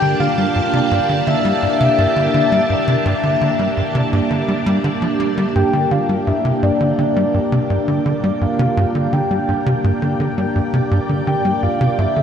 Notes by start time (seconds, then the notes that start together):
Already playing: A#3 D4 G4 D5 G5 A5
0.02 D3
0.20 D3 F5
0.38 G3
0.56 G2
0.73 C3
0.91 G2
1.09 D3
1.27 D3 E5
1.45 G3
1.63 G2
1.80 C3
1.98 G2
2.16 D3
2.34 D3
2.52 G3
2.70 G2
2.88 C3
3.05 G2
3.23 D3
3.41 D3
3.59 G3
3.77 G2
3.95 C3
4.13 G2
4.19 D5
4.30 D3
4.48 G3
4.66 G3
4.84 D3
5.02 F3
5.20 A#3
5.38 G3
5.55 G2 G5
5.73 D3
5.91 D3 F5
6.05 G5
6.09 G3
6.27 G2 E5
6.45 C3
6.63 G2 D5
6.80 D3
6.99 D3
7.16 G3
7.34 G2
7.52 C3
7.70 G2
7.88 D3
8.06 D3
8.24 G3
8.41 G2 F5
8.59 C3
8.77 G2
8.95 D3
9.13 D3 G5
9.31 G3
9.48 G2
9.66 C3
9.84 G2
10.02 D3
10.20 D3
10.38 G3
10.56 G2
10.73 C3
10.91 G2
11.09 D3
11.27 D3 G5
11.45 G3
11.63 G2 F5
11.81 C3
11.98 G2 E5
12.16 D3